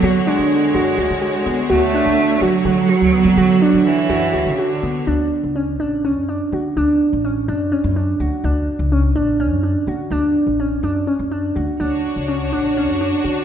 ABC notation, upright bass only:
X:1
M:7/8
L:1/16
Q:1/4=125
K:Dlyd
V:1 name="Upright bass" clef=bass
D,2 z D,3 F,,2 D,, D,2 z D,2 | D,,3 D,,2 z D,2 D,2 z D,,2 D, | D,2 z D,3 F,,2 D,, D,2 z D,2 | D,,2 z C,,3 A,,,3 F,,2 z D,2 |
D,,2 z A,,,3 F,,2 z F,,3 D,, z | D,,2 z C,,3 A,,,3 F,,2 z D,2 | D,,2 z A,,,3 F,,2 z F,,3 D,, z | D,,2 z C,,3 A,,,3 F,,2 z D,2 |]